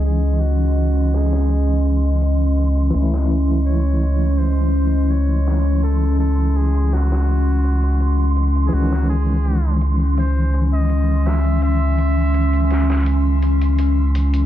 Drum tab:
HH |x-x-xxx-x-xxx-xx|x-x-x-x-o-x-x-xx|x-x-xxx-x-xxx-xx|x-x-x-x-o-x-x-xx|
SD |------oo--------|-o------------o-|------oo--------|-o------------o-|

HH |x-x-xxx-x-xxx-xx|
SD |------oo--------|